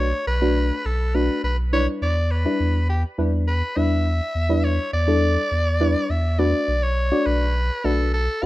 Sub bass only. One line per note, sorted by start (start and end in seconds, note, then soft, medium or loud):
0.00 0.13 B1 medium
0.27 0.71 B1 loud
0.85 1.30 B1 medium
1.44 1.88 B1 medium
2.02 2.46 E2 loud
2.60 3.04 E2 loud
3.18 3.63 E2 loud
3.77 4.21 E2 medium
4.35 4.79 E2 medium
4.93 5.37 E2 loud
5.51 5.96 E2 medium
6.10 6.54 E2 medium
6.68 7.12 B1 medium
7.26 7.70 B1 loud
7.84 8.29 B1 medium
8.43 8.46 B1 medium